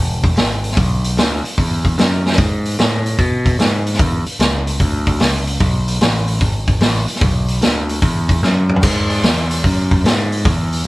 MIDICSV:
0, 0, Header, 1, 4, 480
1, 0, Start_track
1, 0, Tempo, 403226
1, 923, Time_signature, 4, 2, 24, 8
1, 12940, End_track
2, 0, Start_track
2, 0, Title_t, "Picked electric bass"
2, 0, Program_c, 0, 34
2, 0, Note_on_c, 0, 28, 83
2, 423, Note_off_c, 0, 28, 0
2, 441, Note_on_c, 0, 32, 91
2, 907, Note_off_c, 0, 32, 0
2, 916, Note_on_c, 0, 35, 83
2, 1384, Note_off_c, 0, 35, 0
2, 1397, Note_on_c, 0, 38, 79
2, 1698, Note_off_c, 0, 38, 0
2, 1878, Note_on_c, 0, 40, 83
2, 2345, Note_off_c, 0, 40, 0
2, 2356, Note_on_c, 0, 42, 88
2, 2824, Note_off_c, 0, 42, 0
2, 2835, Note_on_c, 0, 44, 83
2, 3303, Note_off_c, 0, 44, 0
2, 3321, Note_on_c, 0, 45, 81
2, 3786, Note_off_c, 0, 45, 0
2, 3793, Note_on_c, 0, 47, 82
2, 4261, Note_off_c, 0, 47, 0
2, 4276, Note_on_c, 0, 44, 91
2, 4742, Note_off_c, 0, 44, 0
2, 4751, Note_on_c, 0, 40, 86
2, 5053, Note_off_c, 0, 40, 0
2, 5231, Note_on_c, 0, 37, 79
2, 5700, Note_off_c, 0, 37, 0
2, 5715, Note_on_c, 0, 38, 89
2, 6181, Note_off_c, 0, 38, 0
2, 6194, Note_on_c, 0, 37, 91
2, 6661, Note_off_c, 0, 37, 0
2, 6670, Note_on_c, 0, 35, 83
2, 7139, Note_off_c, 0, 35, 0
2, 7157, Note_on_c, 0, 33, 84
2, 7622, Note_off_c, 0, 33, 0
2, 7632, Note_on_c, 0, 32, 83
2, 8097, Note_off_c, 0, 32, 0
2, 8104, Note_on_c, 0, 33, 97
2, 8409, Note_off_c, 0, 33, 0
2, 8589, Note_on_c, 0, 35, 88
2, 9059, Note_off_c, 0, 35, 0
2, 9066, Note_on_c, 0, 38, 71
2, 9537, Note_off_c, 0, 38, 0
2, 9547, Note_on_c, 0, 40, 86
2, 10019, Note_off_c, 0, 40, 0
2, 10034, Note_on_c, 0, 42, 94
2, 10500, Note_off_c, 0, 42, 0
2, 10507, Note_on_c, 0, 44, 83
2, 10980, Note_off_c, 0, 44, 0
2, 10992, Note_on_c, 0, 40, 83
2, 11463, Note_off_c, 0, 40, 0
2, 11478, Note_on_c, 0, 42, 84
2, 11947, Note_off_c, 0, 42, 0
2, 11955, Note_on_c, 0, 44, 95
2, 12427, Note_off_c, 0, 44, 0
2, 12439, Note_on_c, 0, 40, 86
2, 12910, Note_off_c, 0, 40, 0
2, 12940, End_track
3, 0, Start_track
3, 0, Title_t, "Muted picked electric bass strokes"
3, 1719, Note_on_c, 9, 29, 37
3, 1838, Note_off_c, 9, 29, 0
3, 5078, Note_on_c, 9, 29, 41
3, 5197, Note_off_c, 9, 29, 0
3, 8434, Note_on_c, 9, 29, 38
3, 8553, Note_off_c, 9, 29, 0
3, 12940, End_track
4, 0, Start_track
4, 0, Title_t, "Drums"
4, 281, Note_on_c, 9, 36, 88
4, 288, Note_on_c, 9, 46, 54
4, 400, Note_off_c, 9, 36, 0
4, 407, Note_off_c, 9, 46, 0
4, 437, Note_on_c, 9, 46, 70
4, 448, Note_on_c, 9, 38, 107
4, 556, Note_off_c, 9, 46, 0
4, 567, Note_off_c, 9, 38, 0
4, 759, Note_on_c, 9, 46, 48
4, 851, Note_on_c, 9, 38, 29
4, 879, Note_off_c, 9, 46, 0
4, 917, Note_on_c, 9, 46, 81
4, 918, Note_on_c, 9, 36, 106
4, 970, Note_off_c, 9, 38, 0
4, 1036, Note_off_c, 9, 46, 0
4, 1037, Note_off_c, 9, 36, 0
4, 1241, Note_on_c, 9, 46, 56
4, 1360, Note_off_c, 9, 46, 0
4, 1400, Note_on_c, 9, 46, 80
4, 1411, Note_on_c, 9, 38, 117
4, 1519, Note_off_c, 9, 46, 0
4, 1530, Note_off_c, 9, 38, 0
4, 1726, Note_on_c, 9, 46, 53
4, 1845, Note_off_c, 9, 46, 0
4, 1879, Note_on_c, 9, 36, 82
4, 1884, Note_on_c, 9, 46, 76
4, 1998, Note_off_c, 9, 36, 0
4, 2003, Note_off_c, 9, 46, 0
4, 2200, Note_on_c, 9, 36, 76
4, 2204, Note_on_c, 9, 46, 54
4, 2319, Note_off_c, 9, 36, 0
4, 2323, Note_off_c, 9, 46, 0
4, 2362, Note_on_c, 9, 46, 65
4, 2373, Note_on_c, 9, 38, 114
4, 2481, Note_off_c, 9, 46, 0
4, 2492, Note_off_c, 9, 38, 0
4, 2688, Note_on_c, 9, 38, 54
4, 2769, Note_off_c, 9, 38, 0
4, 2769, Note_on_c, 9, 38, 72
4, 2836, Note_on_c, 9, 36, 108
4, 2836, Note_on_c, 9, 46, 72
4, 2888, Note_off_c, 9, 38, 0
4, 2955, Note_off_c, 9, 36, 0
4, 2955, Note_off_c, 9, 46, 0
4, 3160, Note_on_c, 9, 46, 55
4, 3279, Note_off_c, 9, 46, 0
4, 3319, Note_on_c, 9, 46, 72
4, 3329, Note_on_c, 9, 38, 119
4, 3438, Note_off_c, 9, 46, 0
4, 3448, Note_off_c, 9, 38, 0
4, 3641, Note_on_c, 9, 46, 51
4, 3760, Note_off_c, 9, 46, 0
4, 3793, Note_on_c, 9, 46, 58
4, 3794, Note_on_c, 9, 36, 78
4, 3912, Note_off_c, 9, 46, 0
4, 3913, Note_off_c, 9, 36, 0
4, 4115, Note_on_c, 9, 36, 80
4, 4119, Note_on_c, 9, 46, 56
4, 4234, Note_off_c, 9, 36, 0
4, 4238, Note_off_c, 9, 46, 0
4, 4279, Note_on_c, 9, 46, 64
4, 4290, Note_on_c, 9, 38, 101
4, 4398, Note_off_c, 9, 46, 0
4, 4409, Note_off_c, 9, 38, 0
4, 4602, Note_on_c, 9, 46, 49
4, 4688, Note_on_c, 9, 38, 31
4, 4721, Note_off_c, 9, 46, 0
4, 4754, Note_on_c, 9, 36, 113
4, 4756, Note_on_c, 9, 46, 68
4, 4807, Note_off_c, 9, 38, 0
4, 4873, Note_off_c, 9, 36, 0
4, 4876, Note_off_c, 9, 46, 0
4, 5075, Note_on_c, 9, 46, 54
4, 5194, Note_off_c, 9, 46, 0
4, 5235, Note_on_c, 9, 46, 82
4, 5246, Note_on_c, 9, 38, 112
4, 5354, Note_off_c, 9, 46, 0
4, 5365, Note_off_c, 9, 38, 0
4, 5560, Note_on_c, 9, 46, 56
4, 5679, Note_off_c, 9, 46, 0
4, 5715, Note_on_c, 9, 36, 84
4, 5715, Note_on_c, 9, 46, 64
4, 5834, Note_off_c, 9, 36, 0
4, 5835, Note_off_c, 9, 46, 0
4, 6033, Note_on_c, 9, 46, 56
4, 6035, Note_on_c, 9, 36, 80
4, 6152, Note_off_c, 9, 46, 0
4, 6154, Note_off_c, 9, 36, 0
4, 6187, Note_on_c, 9, 46, 76
4, 6197, Note_on_c, 9, 38, 98
4, 6306, Note_off_c, 9, 46, 0
4, 6316, Note_off_c, 9, 38, 0
4, 6513, Note_on_c, 9, 46, 55
4, 6632, Note_off_c, 9, 46, 0
4, 6667, Note_on_c, 9, 46, 79
4, 6673, Note_on_c, 9, 36, 101
4, 6786, Note_off_c, 9, 46, 0
4, 6792, Note_off_c, 9, 36, 0
4, 6997, Note_on_c, 9, 46, 58
4, 7116, Note_off_c, 9, 46, 0
4, 7152, Note_on_c, 9, 46, 75
4, 7163, Note_on_c, 9, 38, 112
4, 7271, Note_off_c, 9, 46, 0
4, 7282, Note_off_c, 9, 38, 0
4, 7471, Note_on_c, 9, 46, 52
4, 7590, Note_off_c, 9, 46, 0
4, 7628, Note_on_c, 9, 46, 65
4, 7630, Note_on_c, 9, 36, 76
4, 7747, Note_off_c, 9, 46, 0
4, 7749, Note_off_c, 9, 36, 0
4, 7946, Note_on_c, 9, 46, 50
4, 7949, Note_on_c, 9, 36, 84
4, 8065, Note_off_c, 9, 46, 0
4, 8068, Note_off_c, 9, 36, 0
4, 8103, Note_on_c, 9, 46, 75
4, 8113, Note_on_c, 9, 38, 104
4, 8222, Note_off_c, 9, 46, 0
4, 8232, Note_off_c, 9, 38, 0
4, 8429, Note_on_c, 9, 46, 54
4, 8516, Note_on_c, 9, 38, 31
4, 8548, Note_off_c, 9, 46, 0
4, 8586, Note_on_c, 9, 46, 72
4, 8588, Note_on_c, 9, 36, 113
4, 8635, Note_off_c, 9, 38, 0
4, 8705, Note_off_c, 9, 46, 0
4, 8707, Note_off_c, 9, 36, 0
4, 8908, Note_on_c, 9, 46, 53
4, 9027, Note_off_c, 9, 46, 0
4, 9070, Note_on_c, 9, 46, 77
4, 9081, Note_on_c, 9, 38, 101
4, 9189, Note_off_c, 9, 46, 0
4, 9200, Note_off_c, 9, 38, 0
4, 9395, Note_on_c, 9, 46, 49
4, 9514, Note_off_c, 9, 46, 0
4, 9550, Note_on_c, 9, 36, 85
4, 9550, Note_on_c, 9, 46, 62
4, 9669, Note_off_c, 9, 36, 0
4, 9669, Note_off_c, 9, 46, 0
4, 9868, Note_on_c, 9, 46, 54
4, 9870, Note_on_c, 9, 36, 79
4, 9987, Note_off_c, 9, 46, 0
4, 9989, Note_off_c, 9, 36, 0
4, 10039, Note_on_c, 9, 38, 58
4, 10158, Note_off_c, 9, 38, 0
4, 10349, Note_on_c, 9, 45, 85
4, 10430, Note_on_c, 9, 43, 75
4, 10468, Note_off_c, 9, 45, 0
4, 10510, Note_on_c, 9, 46, 81
4, 10510, Note_on_c, 9, 49, 84
4, 10512, Note_on_c, 9, 36, 104
4, 10549, Note_off_c, 9, 43, 0
4, 10629, Note_off_c, 9, 46, 0
4, 10629, Note_off_c, 9, 49, 0
4, 10631, Note_off_c, 9, 36, 0
4, 10831, Note_on_c, 9, 46, 56
4, 10950, Note_off_c, 9, 46, 0
4, 10991, Note_on_c, 9, 46, 78
4, 11002, Note_on_c, 9, 38, 101
4, 11110, Note_off_c, 9, 46, 0
4, 11121, Note_off_c, 9, 38, 0
4, 11317, Note_on_c, 9, 46, 55
4, 11436, Note_off_c, 9, 46, 0
4, 11478, Note_on_c, 9, 36, 75
4, 11480, Note_on_c, 9, 46, 72
4, 11597, Note_off_c, 9, 36, 0
4, 11599, Note_off_c, 9, 46, 0
4, 11801, Note_on_c, 9, 36, 75
4, 11803, Note_on_c, 9, 46, 51
4, 11920, Note_off_c, 9, 36, 0
4, 11922, Note_off_c, 9, 46, 0
4, 11967, Note_on_c, 9, 46, 67
4, 11977, Note_on_c, 9, 38, 107
4, 12086, Note_off_c, 9, 46, 0
4, 12096, Note_off_c, 9, 38, 0
4, 12287, Note_on_c, 9, 46, 48
4, 12406, Note_off_c, 9, 46, 0
4, 12443, Note_on_c, 9, 36, 110
4, 12447, Note_on_c, 9, 46, 72
4, 12562, Note_off_c, 9, 36, 0
4, 12566, Note_off_c, 9, 46, 0
4, 12766, Note_on_c, 9, 46, 51
4, 12885, Note_off_c, 9, 46, 0
4, 12940, End_track
0, 0, End_of_file